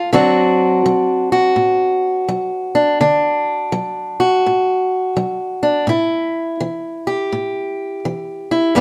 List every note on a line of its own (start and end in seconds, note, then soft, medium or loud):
0.13 0.80 D3 medium
0.13 0.85 F#3 medium
0.13 2.99 C4 medium
0.13 2.74 D4 medium
0.13 1.32 F#4 medium
0.86 1.53 F#3 medium
1.32 4.19 F#4 medium
1.56 2.24 A2 medium
2.28 2.96 F#3 medium
2.75 2.98 D4 medium
3.01 3.68 D3 medium
3.01 5.62 D4 medium
3.72 4.40 F#3 medium
4.20 5.89 F#4 medium
4.46 5.13 A2 medium
5.17 5.84 F#3 medium
5.63 5.86 D4 medium
5.87 6.55 A2 medium
5.87 8.50 E4 medium
6.61 7.27 E3 medium
7.07 8.73 G4 medium
7.32 7.99 A2 medium
8.05 8.71 E3 medium
8.51 8.73 E4 medium
8.75 8.81 G2 medium
8.75 8.81 G3 medium
8.75 8.81 B3 medium
8.75 8.81 F4 medium
8.75 8.81 G4 medium